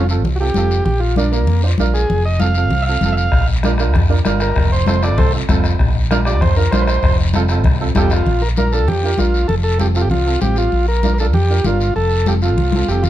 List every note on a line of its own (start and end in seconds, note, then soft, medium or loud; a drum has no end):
0.00 0.24 F1 loud
0.09 0.20 C4 medium
0.09 0.20 F4 medium
0.09 0.20 A4 medium
0.09 short guiro medium
0.24 0.49 C2 medium
0.24 high conga soft
0.24 low conga medium
0.24 long guiro medium
0.36 0.38 F#4 medium
0.40 0.45 C4 medium
0.40 0.45 F4 medium
0.40 0.84 G4 loud
0.40 0.46 A4 medium
0.54 0.80 F1 loud
0.54 0.77 C4 medium
0.54 0.78 F4 medium
0.54 0.78 A4 medium
0.54 high conga medium
0.54 short guiro medium
0.71 short guiro medium
0.85 1.48 A#1 loud
0.85 1.01 G4 medium
0.85 high conga soft
0.85 low conga medium
0.85 long guiro medium
1.00 1.16 F4 medium
1.16 1.22 D4 medium
1.16 1.32 D4 medium
1.16 1.22 F4 medium
1.16 1.23 A#4 medium
1.16 high conga medium
1.16 short guiro medium
1.32 1.62 A#3 medium
1.32 1.43 D4 medium
1.32 1.44 F4 medium
1.32 1.44 A#4 medium
1.32 short guiro medium
1.47 1.73 F2 medium
1.47 high conga soft
1.47 low conga medium
1.47 long guiro medium
1.63 1.68 D4 medium
1.63 1.69 F4 medium
1.63 1.69 C5 medium
1.78 2.03 A#1 medium
1.78 2.00 D4 medium
1.78 2.01 F4 medium
1.78 2.01 A#4 medium
1.78 high conga medium
1.78 short guiro medium
1.94 2.24 G#4 medium
1.94 short guiro medium
2.09 2.71 F1 loud
2.09 high conga soft
2.09 low conga medium
2.09 long guiro medium
2.25 2.40 D#5 medium
2.40 2.46 C4 medium
2.40 2.46 F4 medium
2.40 2.46 A4 medium
2.40 2.85 F5 medium
2.40 high conga medium
2.40 short guiro medium
2.55 2.67 C4 medium
2.55 2.68 F4 medium
2.55 2.67 A4 medium
2.55 short guiro medium
2.71 2.96 C2 medium
2.71 high conga soft
2.71 low conga medium
2.71 long guiro medium
2.82 2.84 E5 medium
2.87 2.93 C4 medium
2.87 2.93 F4 medium
2.87 2.93 A4 medium
2.87 3.16 F5 loud
3.01 3.26 F1 loud
3.01 3.25 C4 medium
3.01 3.25 F4 medium
3.01 high conga medium
3.01 low conga medium
3.01 short guiro medium
3.05 3.25 A4 medium
3.12 3.15 E5 medium
3.17 3.47 F5 medium
3.17 short guiro medium
3.32 3.94 A#1 loud
3.32 bombo low medium
3.32 bombo rim medium
3.32 high conga soft
3.32 long guiro medium
3.63 3.69 D4 medium
3.63 3.70 F4 medium
3.63 3.70 A#4 medium
3.63 bombo rim medium
3.63 high conga medium
3.63 short guiro medium
3.78 3.90 D4 medium
3.78 3.90 F4 medium
3.78 3.90 A#4 medium
3.78 bombo rim medium
3.78 short guiro medium
3.94 4.19 F2 medium
3.94 bombo low medium
3.94 bombo rim medium
3.94 high conga soft
3.94 low conga medium
3.94 long guiro medium
4.09 4.15 D4 medium
4.09 4.15 F4 medium
4.09 4.15 A#4 medium
4.25 4.50 G1 loud
4.25 4.47 D4 medium
4.25 4.47 F4 medium
4.25 4.47 A#4 medium
4.25 bombo rim medium
4.25 high conga medium
4.25 short guiro medium
4.40 4.71 A#4 medium
4.40 bombo rim medium
4.40 short guiro medium
4.56 5.18 F1 loud
4.56 bombo low medium
4.56 bombo rim medium
4.56 high conga soft
4.56 long guiro medium
4.72 4.86 C5 medium
4.87 4.92 C4 medium
4.87 4.93 F4 medium
4.87 4.93 A4 medium
4.87 5.02 C5 medium
4.87 bombo rim medium
4.87 high conga medium
4.87 short guiro medium
5.02 5.13 C4 medium
5.02 5.14 F4 medium
5.02 5.14 A4 medium
5.02 5.18 D5 medium
5.02 bombo rim medium
5.02 short guiro medium
5.18 5.43 C2 medium
5.18 5.32 A4 medium
5.18 5.33 C5 loud
5.18 bombo low medium
5.18 bombo rim medium
5.18 high conga soft
5.18 low conga medium
5.18 long guiro medium
5.34 5.39 C4 medium
5.34 5.39 F4 medium
5.34 5.39 A4 medium
5.49 5.74 F1 loud
5.49 5.70 C4 medium
5.49 5.71 F4 medium
5.49 5.71 A4 medium
5.49 bombo low medium
5.49 bombo rim medium
5.49 high conga medium
5.49 low conga medium
5.49 short guiro medium
5.64 bombo rim medium
5.64 short guiro medium
5.79 6.41 A#1 loud
5.79 bombo low medium
5.79 bombo rim medium
5.79 high conga soft
5.79 long guiro medium
6.11 6.16 D4 medium
6.11 6.16 F4 medium
6.11 6.16 A#4 loud
6.11 bombo rim medium
6.11 high conga medium
6.11 short guiro medium
6.25 6.37 D4 medium
6.25 6.37 F4 medium
6.25 6.37 G4 medium
6.25 6.41 D5 loud
6.25 bombo rim medium
6.25 short guiro medium
6.41 6.66 F2 medium
6.41 6.56 C5 medium
6.41 bombo low medium
6.41 bombo rim medium
6.41 high conga soft
6.41 low conga medium
6.41 long guiro medium
6.56 6.62 D4 medium
6.56 6.62 F4 medium
6.56 6.71 A#4 medium
6.56 6.63 A#4 medium
6.71 6.97 A#1 loud
6.71 6.94 D4 medium
6.71 6.94 F4 medium
6.71 6.94 A#4 medium
6.71 6.85 C5 medium
6.71 bombo rim medium
6.71 high conga medium
6.71 short guiro medium
6.81 6.84 B4 medium
6.86 7.17 C5 loud
6.86 bombo rim medium
6.86 short guiro medium
7.03 7.65 F1 loud
7.03 bombo low medium
7.03 bombo rim medium
7.03 high conga soft
7.03 long guiro medium
7.33 7.40 C4 medium
7.33 7.40 F4 medium
7.33 7.40 A4 loud
7.33 bombo rim medium
7.33 high conga medium
7.33 short guiro medium
7.48 7.60 C4 medium
7.48 7.60 F4 medium
7.48 7.61 A4 medium
7.48 bombo rim medium
7.48 short guiro medium
7.64 7.89 C2 medium
7.64 bombo low medium
7.64 bombo rim medium
7.64 high conga soft
7.64 low conga medium
7.64 long guiro medium
7.81 7.86 C4 medium
7.81 7.86 F4 medium
7.81 7.86 A4 medium
7.95 8.20 F1 loud
7.95 8.17 C4 medium
7.95 8.18 F4 medium
7.95 8.12 G4 loud
7.95 8.18 A4 loud
7.95 bombo low medium
7.95 bombo rim medium
7.95 high conga medium
7.95 short guiro medium
8.10 8.43 F4 loud
8.10 bombo rim medium
8.10 short guiro medium
8.26 8.88 A#1 loud
8.26 high conga soft
8.26 low conga medium
8.26 long guiro medium
8.42 8.49 A#4 loud
8.56 8.62 D4 medium
8.56 8.63 F4 medium
8.56 8.73 A#4 loud
8.56 8.63 A#4 medium
8.56 high conga medium
8.56 short guiro medium
8.72 8.84 D4 medium
8.72 8.84 F4 medium
8.72 8.88 A4 medium
8.72 8.84 A#4 medium
8.72 short guiro medium
8.88 9.12 F2 medium
8.88 9.19 G4 loud
8.88 high conga soft
8.88 low conga medium
8.88 long guiro medium
9.03 9.08 D4 medium
9.03 9.09 F4 medium
9.03 9.09 A#4 medium
9.18 9.43 A#1 medium
9.18 9.40 D4 medium
9.18 9.47 F4 medium
9.18 9.40 F4 medium
9.18 9.40 A#4 medium
9.18 high conga medium
9.18 short guiro medium
9.34 short guiro medium
9.48 10.11 F1 loud
9.48 9.55 A4 loud
9.48 high conga soft
9.48 low conga medium
9.48 long guiro medium
9.64 9.78 A4 medium
9.79 9.85 C4 medium
9.79 9.85 F4 medium
9.79 9.87 G4 medium
9.79 9.85 A4 medium
9.79 high conga medium
9.79 short guiro medium
9.94 10.06 C4 medium
9.94 10.06 F4 medium
9.94 10.02 F4 medium
9.94 10.06 A4 medium
9.94 short guiro medium
10.01 10.09 G4 medium
10.10 10.35 C2 medium
10.10 10.40 F4 medium
10.10 high conga soft
10.10 low conga medium
10.10 long guiro medium
10.26 10.31 C4 medium
10.26 10.32 F4 medium
10.26 10.32 A4 medium
10.41 10.66 A1 loud
10.41 10.63 C4 medium
10.41 10.63 F4 medium
10.41 10.57 G4 medium
10.41 10.63 G4 medium
10.41 high conga medium
10.41 short guiro medium
10.56 10.86 F4 loud
10.56 short guiro medium
10.72 11.34 A#1 loud
10.72 high conga soft
10.72 long guiro medium
10.88 11.13 A#4 loud
11.03 11.09 D4 medium
11.03 11.09 F4 medium
11.03 11.09 A#4 medium
11.03 high conga medium
11.03 short guiro medium
11.14 11.18 A#4 medium
11.18 11.30 D4 medium
11.18 11.30 F4 medium
11.18 11.27 A4 medium
11.18 11.31 A#4 medium
11.18 short guiro medium
11.33 11.59 F2 medium
11.33 11.66 G4 loud
11.33 high conga soft
11.33 low conga medium
11.33 long guiro medium
11.50 11.55 D4 medium
11.50 11.55 F4 medium
11.50 11.55 A#4 medium
11.64 11.89 G1 loud
11.64 11.87 D4 medium
11.64 11.94 F4 medium
11.64 11.87 F4 medium
11.64 11.87 A#4 medium
11.64 high conga medium
11.64 low conga medium
11.64 short guiro medium
11.80 short guiro medium
11.95 12.57 F1 loud
11.95 12.27 A4 loud
11.95 high conga soft
11.95 long guiro medium
12.26 12.32 C4 medium
12.26 12.32 F4 medium
12.26 12.34 G4 medium
12.26 12.32 A4 medium
12.26 high conga medium
12.26 short guiro medium
12.42 12.54 C4 medium
12.42 12.89 F4 medium
12.42 12.54 F4 medium
12.42 12.54 A4 medium
12.42 short guiro medium
12.57 12.82 C2 medium
12.57 high conga soft
12.57 low conga medium
12.57 long guiro medium
12.72 12.79 C4 medium
12.72 12.79 F4 medium
12.72 12.79 A4 medium
12.72 high conga loud
12.88 13.10 F1 loud
12.88 13.10 C4 medium
12.88 13.10 F4 medium
12.88 13.04 G4 medium
12.88 13.10 A4 medium
12.88 short guiro medium
13.03 13.10 F4 medium
13.03 low conga medium
13.03 short guiro medium